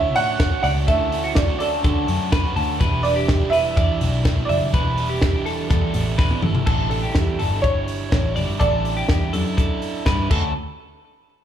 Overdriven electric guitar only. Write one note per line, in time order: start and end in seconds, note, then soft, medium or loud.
0.00 0.14 D3 medium
0.00 0.14 A3 medium
0.00 0.15 C#4 medium
0.00 0.16 F#4 medium
0.15 0.51 D3 medium
0.15 0.51 A3 medium
0.15 0.51 C#4 medium
0.15 0.50 F#4 medium
0.51 0.86 D3 medium
0.51 0.87 A3 medium
0.51 0.88 C#4 medium
0.51 0.88 F#4 medium
0.87 1.10 D3 medium
0.87 1.11 A3 medium
0.87 1.12 C#4 medium
0.87 1.13 F#4 medium
1.11 1.48 D3 medium
1.11 1.48 A3 medium
1.11 1.48 C#4 medium
1.11 1.47 F#4 medium
1.48 1.82 D3 medium
1.48 1.83 A3 medium
1.48 1.84 C#4 medium
1.48 1.84 F#4 medium
1.83 2.07 D3 medium
1.83 2.08 A3 medium
1.83 2.08 C#4 medium
1.83 2.09 F#4 medium
2.08 2.45 D3 medium
2.08 2.45 A3 medium
2.08 2.44 C#4 medium
2.08 2.44 F#4 medium
2.45 2.80 D3 medium
2.45 2.81 A3 medium
2.45 2.81 C#4 medium
2.45 2.81 F#4 medium
2.81 3.03 E3 medium
2.81 3.04 G3 medium
2.81 3.05 D4 medium
2.81 3.06 E4 medium
3.04 3.41 E3 medium
3.04 3.41 G3 medium
3.04 3.40 D4 medium
3.04 3.40 E4 medium
3.41 3.78 E2 medium
3.41 3.78 B2 medium
3.41 3.75 E3 medium
3.41 3.77 G3 medium
3.41 3.77 D4 medium
3.41 3.77 E4 medium
3.77 4.01 E3 medium
3.77 4.02 G3 medium
3.77 4.02 D4 medium
3.77 4.02 E4 medium
4.02 4.38 E2 medium
4.02 4.38 B2 medium
4.02 4.38 E3 medium
4.02 4.37 G3 medium
4.02 4.37 D4 medium
4.02 4.37 E4 medium
4.38 4.75 E2 medium
4.38 4.75 B2 medium
4.38 4.72 E3 medium
4.38 4.73 G3 medium
4.38 4.74 D4 medium
4.38 4.74 E4 medium
4.74 4.97 E3 medium
4.74 4.97 G3 medium
4.74 4.98 D4 medium
4.74 4.99 E4 medium
4.98 5.34 E3 medium
4.98 5.34 G3 medium
4.98 5.34 D4 medium
4.98 5.33 E4 medium
5.35 5.72 E2 medium
5.35 5.71 B2 medium
5.35 5.69 E3 medium
5.35 5.70 G3 medium
5.35 5.71 D4 medium
5.35 5.71 E4 medium
5.70 5.94 E3 medium
5.70 5.94 G3 medium
5.70 5.95 D4 medium
5.70 5.95 E4 medium
5.94 6.31 E2 medium
5.94 6.30 B2 medium
5.94 6.30 E3 medium
5.94 6.30 G3 medium
5.94 6.30 D4 loud
5.94 6.29 E4 loud
6.30 6.68 E2 medium
6.30 6.66 B2 medium
6.30 6.66 E3 medium
6.30 6.66 G3 medium
6.30 6.66 D4 medium
6.30 6.67 E4 medium
6.66 7.03 A2 medium
6.66 7.03 E3 medium
6.66 7.03 G3 medium
6.66 7.03 D4 medium
6.66 7.01 E4 loud
7.02 7.38 G3 soft
7.02 7.39 D4 medium
7.02 7.39 E4 medium
7.39 7.51 E3 medium
7.39 7.52 G3 medium
7.39 7.51 D4 medium
7.39 7.50 E4 medium
7.51 8.11 G3 soft
7.51 8.12 D4 medium
7.51 8.12 E4 medium
8.11 8.34 E3 medium
8.11 8.35 G3 medium
8.11 8.36 D4 medium
8.11 8.37 E4 medium
8.35 8.59 E3 medium
8.35 8.60 G3 medium
8.35 8.60 D4 medium
8.35 8.60 E4 medium
8.60 8.97 A2 medium
8.60 8.97 E3 medium
8.60 8.97 G3 medium
8.60 8.97 D4 medium
8.60 8.95 E4 medium
8.97 9.33 G3 soft
8.97 9.33 D4 soft
8.97 9.33 E4 medium
9.33 9.46 E3 medium
9.33 9.46 G3 medium
9.33 9.45 D4 medium
9.33 9.44 E4 medium
9.45 10.08 D4 medium
9.45 10.06 E4 medium
10.06 10.30 E3 medium
10.06 10.31 G3 medium
10.06 10.32 D4 medium
10.06 10.32 E4 medium
10.30 10.50 D3 medium
10.30 10.50 A3 medium
10.30 10.51 C#4 medium
10.30 10.51 F#4 medium